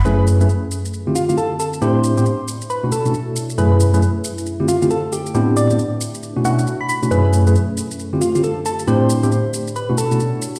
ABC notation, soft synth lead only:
X:1
M:4/4
L:1/16
Q:"Swing 16ths" 1/4=136
K:F#m
V:1 name="Soft synth lead"
B B z8 =F F A z A z | =c6 z2 B z A4 z2 | B B z8 =F F A z =G z | z2 d z6 z f f z b b z |
B B z8 =F F A z A z | =c6 z2 B z A4 z2 |]